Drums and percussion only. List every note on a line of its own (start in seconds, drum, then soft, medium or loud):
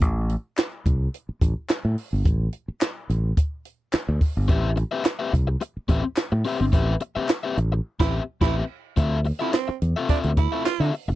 0.02 kick loud
0.02 closed hi-hat medium
0.29 closed hi-hat medium
0.57 snare loud
0.57 clap loud
0.57 closed hi-hat medium
0.86 kick medium
0.86 closed hi-hat medium
1.14 closed hi-hat medium
1.41 kick medium
1.41 closed hi-hat medium
1.69 snare loud
1.69 clap loud
1.69 clap medium
1.69 closed hi-hat medium
1.98 open hi-hat medium
2.25 kick loud
2.25 closed hi-hat medium
2.53 closed hi-hat medium
2.81 snare loud
2.81 clap loud
2.81 closed hi-hat loud
3.10 closed hi-hat medium
3.37 kick medium
3.37 closed hi-hat loud
3.65 closed hi-hat medium
3.92 snare loud
3.92 clap loud
3.92 clap medium
3.92 closed hi-hat medium
4.21 kick medium
4.21 open hi-hat medium
4.49 kick loud
4.49 closed hi-hat medium
4.77 closed hi-hat medium
5.05 snare loud
5.05 clap loud
5.05 closed hi-hat medium
5.33 kick medium
5.33 closed hi-hat medium
5.61 closed hi-hat loud
5.89 kick medium
5.89 closed hi-hat medium
6.16 snare loud
6.16 clap loud
6.16 clap medium
6.16 closed hi-hat medium
6.45 open hi-hat medium
6.73 kick loud
6.73 closed hi-hat medium
7.00 closed hi-hat medium
7.29 snare loud
7.29 clap loud
7.29 closed hi-hat medium
7.58 closed hi-hat medium
8.00 kick loud
8.00 snare loud
8.00 crash medium
8.41 kick loud
8.41 snare loud
8.41 crash medium
8.97 kick medium
8.97 closed hi-hat medium
9.25 open hi-hat medium
9.41 closed hi-hat soft
9.53 snare loud
9.53 clap medium
9.53 closed hi-hat medium
9.82 closed hi-hat medium
10.09 kick medium
10.09 closed hi-hat medium
10.24 closed hi-hat medium
10.37 kick medium
10.37 closed hi-hat medium
10.65 snare medium
10.65 clap medium
10.65 closed hi-hat medium
10.94 open hi-hat medium